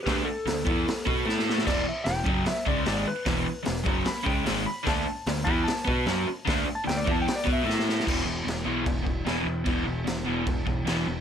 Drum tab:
CC |----------------|x---------------|----------------|----------------|
HH |o---o---o-------|----o---o---o---|o---o---o---o---|o---o---o---o---|
SD |o---o---o---oooo|o---o---o---o---|o---o---o---o---|o---o---o---o---|
BD |o-----o---o-----|o-----o---o-----|o-----o---o-----|o-----o---o-----|

CC |----------------|x---x---x---x---|x---x---x---x---|
HH |o---o---o-------|----------------|----------------|
SD |o---o---o---oooo|----o-------o---|----o-------o---|
BD |o-----o---o-----|o-------o-o-----|o-------o-o-----|